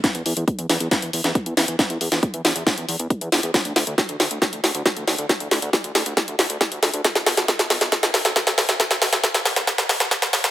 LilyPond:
<<
  \new Staff \with { instrumentName = "Analog synth bass" } { \clef bass \time 4/4 \key e \minor \tempo 4 = 137 r16 e,16 e,16 e,16 r16 e,16 e,16 e,16 r16 e,16 e,16 e,16 r16 e,16 e,16 e,16 | r16 e,16 e,16 e,16 r16 e,16 e,16 e,16 r16 e,16 e,16 e,16 r16 e,16 e,16 e,16 | r16 d,16 d,16 d,16 r16 d,16 d,16 d,16 r16 d,16 d,16 d,16 r16 d,16 d,16 d,16 | r16 d,16 d,16 d,16 r16 d,16 d,16 d,16 r16 d,16 d,16 d,16 r16 d,16 d,16 d,16 |
r16 b,,16 b,,16 b,,16 r16 b,,16 b,,16 b,,16 r16 b,,16 b,,16 b,,16 r16 b,,16 b,,16 b,,16 | r16 b,,16 b,,16 b,,16 r16 b,,16 b,,16 b,,16 r16 b,,16 b,,16 b,,16 r16 b,,16 a,,16 b,,16 | }
  \new DrumStaff \with { instrumentName = "Drums" } \drummode { \time 4/4 <hh bd sn>16 hh16 hho16 hh16 <hh bd>16 hh16 <hho sn>16 hh16 <hh bd sn>16 hh16 hho16 <hh sn>16 <hh bd>16 hh16 <hho sn>16 hh16 | <hh bd sn>16 hh16 hho16 <hh sn>16 <hh bd>16 hh16 <hho sn>16 hh16 <hh bd sn>16 hh16 hho16 hh16 <hh bd>16 hh16 <hho sn>16 hh16 | <hh bd sn>16 hh16 <hho sn>16 hh16 <hh bd sn>16 hh16 <hho sn>16 hh16 <hh bd sn>16 hh16 <hho sn>16 hh16 <hh bd sn>16 hh16 <hho sn>16 hh16 | <hh bd sn>16 hh16 <hho sn>16 hh16 <hh bd sn>16 hh16 <hho sn>16 hh16 <hh bd sn>16 hh16 <hho sn>16 hh16 <hh bd sn>16 hh16 <hho sn>16 hh16 |
<hh bd sn>16 <hh sn>16 <hho sn>16 <hh sn>16 <hh bd sn>16 <hh sn>16 <hho sn>16 <hh sn>16 <hh bd sn>16 <hh sn>16 <hho sn>16 <hh sn>16 <hh bd sn>16 <hh sn>16 <hho sn>16 <hh sn>16 | <hh bd sn>16 <hh sn>16 <hho sn>16 <hh sn>16 <hh bd sn>16 <hh sn>16 <hho sn>16 <hh sn>16 <hh bd sn>16 <hh sn>16 <hho sn>16 <hh sn>16 <hh bd sn>16 <hh sn>16 <hho sn>16 <hh sn>16 | }
>>